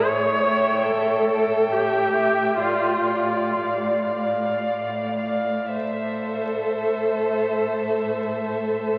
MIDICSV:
0, 0, Header, 1, 5, 480
1, 0, Start_track
1, 0, Key_signature, 0, "minor"
1, 0, Tempo, 820793
1, 34, Time_signature, 3, 2, 24, 8
1, 993, Tempo, 887574
1, 1473, Tempo, 963082
1, 1953, Tempo, 1052632
1, 2433, Tempo, 1167315
1, 2913, Tempo, 1094891
1, 4323, End_track
2, 0, Start_track
2, 0, Title_t, "Violin"
2, 0, Program_c, 0, 40
2, 275, Note_on_c, 0, 79, 41
2, 739, Note_off_c, 0, 79, 0
2, 754, Note_on_c, 0, 79, 44
2, 1223, Note_off_c, 0, 79, 0
2, 1225, Note_on_c, 0, 79, 35
2, 1467, Note_off_c, 0, 79, 0
2, 1479, Note_on_c, 0, 77, 37
2, 1707, Note_off_c, 0, 77, 0
2, 1723, Note_on_c, 0, 77, 36
2, 2186, Note_off_c, 0, 77, 0
2, 2191, Note_on_c, 0, 77, 41
2, 2664, Note_off_c, 0, 77, 0
2, 2671, Note_on_c, 0, 77, 34
2, 2897, Note_off_c, 0, 77, 0
2, 2899, Note_on_c, 0, 76, 32
2, 4323, Note_off_c, 0, 76, 0
2, 4323, End_track
3, 0, Start_track
3, 0, Title_t, "Violin"
3, 0, Program_c, 1, 40
3, 280, Note_on_c, 1, 76, 43
3, 742, Note_off_c, 1, 76, 0
3, 753, Note_on_c, 1, 76, 38
3, 1223, Note_off_c, 1, 76, 0
3, 1231, Note_on_c, 1, 76, 37
3, 1470, Note_off_c, 1, 76, 0
3, 1480, Note_on_c, 1, 74, 37
3, 1707, Note_off_c, 1, 74, 0
3, 1720, Note_on_c, 1, 74, 39
3, 2184, Note_off_c, 1, 74, 0
3, 2188, Note_on_c, 1, 74, 33
3, 2663, Note_off_c, 1, 74, 0
3, 2676, Note_on_c, 1, 74, 29
3, 2911, Note_off_c, 1, 74, 0
3, 2920, Note_on_c, 1, 72, 36
3, 4323, Note_off_c, 1, 72, 0
3, 4323, End_track
4, 0, Start_track
4, 0, Title_t, "Viola"
4, 0, Program_c, 2, 41
4, 36, Note_on_c, 2, 73, 70
4, 509, Note_off_c, 2, 73, 0
4, 514, Note_on_c, 2, 69, 64
4, 1007, Note_on_c, 2, 67, 60
4, 1015, Note_off_c, 2, 69, 0
4, 1473, Note_off_c, 2, 67, 0
4, 1476, Note_on_c, 2, 65, 56
4, 1945, Note_off_c, 2, 65, 0
4, 2916, Note_on_c, 2, 69, 43
4, 4323, Note_off_c, 2, 69, 0
4, 4323, End_track
5, 0, Start_track
5, 0, Title_t, "Cello"
5, 0, Program_c, 3, 42
5, 44, Note_on_c, 3, 45, 52
5, 457, Note_off_c, 3, 45, 0
5, 515, Note_on_c, 3, 45, 50
5, 939, Note_off_c, 3, 45, 0
5, 1004, Note_on_c, 3, 45, 45
5, 1420, Note_off_c, 3, 45, 0
5, 1483, Note_on_c, 3, 45, 47
5, 1900, Note_off_c, 3, 45, 0
5, 1959, Note_on_c, 3, 45, 48
5, 2377, Note_off_c, 3, 45, 0
5, 2435, Note_on_c, 3, 45, 40
5, 2859, Note_off_c, 3, 45, 0
5, 2913, Note_on_c, 3, 45, 36
5, 4323, Note_off_c, 3, 45, 0
5, 4323, End_track
0, 0, End_of_file